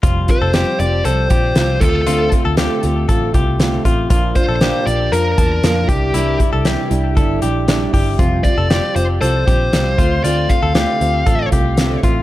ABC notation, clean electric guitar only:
X:1
M:4/4
L:1/16
Q:1/4=117
K:F
V:1 name="Clean electric guitar"
F3 A G4 A2 G4 F2 | F3 A G4 A2 G4 F2 | F3 A G4 B2 a4 G2 | E3 A G4 A2 G4 G2 |
F3 A G4 A2 G4 F2 | F3 A G4 A2 G4 F2 |]